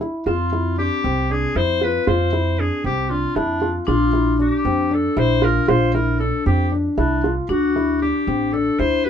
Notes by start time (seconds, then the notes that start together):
0.01 E4
0.26 F2 C4 F4
0.53 E4
0.78 D4 G4
1.04 C2 C4
1.30 D4 G#4
1.55 F2 E4 C5
1.81 F4 B4
2.07 F2 F4 C5
2.33 E4
2.59 D4 G#4
2.84 C2 C4 G4
3.10 D4 F4
3.36 F2 D4 E4
3.62 F4
3.87 A#1 D4 F4
4.13 E4
4.39 D4 G4
4.65 F2 C4
4.91 D4 A4
5.17 A#1 E4 C5
5.42 F4 A#4
5.68 A#1 F4 C5
5.94 E4 A#4
6.20 D4 A4
6.46 F2 C4 G4
6.72 D4
6.97 C2 D4 E4
7.24 F4
7.49 D2 D4 F#4
7.76 E4
8.02 D4 G4
8.27 A1 C4
8.53 D4 A4
8.79 D2 E4 C5
9.04 F#4 B4